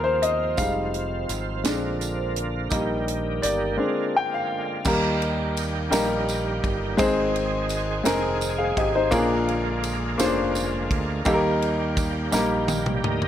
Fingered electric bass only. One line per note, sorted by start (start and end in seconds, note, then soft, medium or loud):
0.00 0.54 D#2 medium
0.58 1.26 F1 medium
1.29 1.62 G#1 medium
1.65 2.68 A#1 medium
2.72 3.39 A#1 loud
3.43 3.76 G1 loud
4.86 5.89 D#2 loud
5.92 6.60 A#1 loud
6.64 6.97 G1 medium
7.00 8.02 G#1 loud
8.06 8.73 F1 medium
8.77 9.10 G#1 loud
9.12 10.15 A#1 loud
10.20 10.87 F1 loud
10.91 11.23 D2 medium
11.26 12.29 D#2 loud
12.33 13.00 A#1 medium
13.04 13.28 D2 medium